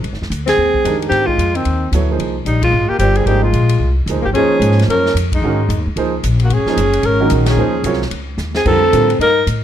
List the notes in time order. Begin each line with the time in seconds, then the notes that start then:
0.03 C2, ride
0.12 G#1, snare
0.22 F1, snare
0.30 D2, hi-hat pedal, ride
0.46 C4 G#4, snare, ride
0.57 D#2
0.74 kick
0.84 F2 D#3 G#3 D4 G4 A#4, hi-hat pedal, ride
1.02 ride
1.09 G#2 C4 G4, snare, ride
1.26 G#3 F4, kick
1.38 F2, hi-hat pedal, ride
1.55 D#3 C4, ride
1.65 D#2, ride
1.92 D2 F#3 B3 E4 A4 C#5, hi-hat pedal, ride
2.11 F3 A#3 D#4 G#4 C5
2.19 C2, ride
2.45 A#1 G3 D#4, hi-hat pedal, ride
2.62 G#3 F4, kick, ride
2.73 G#1
2.89 A#3 G4, muted upright bass stroke
2.99 G1 G3 C4 F4 G4 A#4, hi-hat pedal, ride
3.03 D5
3.15 C4 G#4, ride
3.26 G#1 F3 A#3 C4 D#4 G4 G#4 C5, ride
3.42 G#3 F4
3.53 A#1, hi-hat pedal, ride
3.69 ride
3.80 C2
4.06 D2 F3 A#3 D#4, hi-hat pedal, ride
4.10 G#4 C5
4.16 C2
4.22 G#1 A#3 G4
4.33 D#2 F3 A#3 C#4 D#4 G#4, ride
4.38 C5
4.60 G#2, hi-hat pedal, ride
4.72 snare
4.79 snare, ride
4.88 F#2 C#4 A#4, ride
5.06 snare
5.14 F2, hi-hat pedal, ride
5.32 G#3 D#4, kick, ride
5.42 G#2 D#3 G#3 C#4 F#4 A#4
5.69 F2, hi-hat pedal, ride
5.77 D#2
5.87 C#2
5.96 C#2 F3 A#3 D#4 G#4 C5, ride
6.23 A#1, hi-hat pedal, ride
6.40 ride
6.44 A#3 F#4
6.49 G#1 C#4 G#4, ride
6.65 F3 A#3 D#4 G#4 C5, muted upright bass stroke, snare
6.77 F#1, hi-hat pedal, ride
6.93 ride
7.03 G#1 C#4 A#4, ride
7.20 D#3 G#3 C#4 F#4 A#4
7.30 A#1, hi-hat pedal, ride
7.46 C#4 G#4, snare, ride
7.57 D#2 F3 A#3 D#4 G#4 C5
7.83 C2 F#3 C4 F4 A#4 C#5, hi-hat pedal, ride
7.93 snare
8.02 snare
8.11 C#2, ride
8.38 D#2, snare, hi-hat pedal
8.55 C4 G#4, snare
8.65 F2 D3 G3 C4 F4 A4 A#4, kick, crash
8.92 A2 D3 G3 C4 F4 A#4, hi-hat pedal, ride
9.10 ride
9.19 G2 D#4 A#4, ride
9.47 A2, hi-hat pedal, ride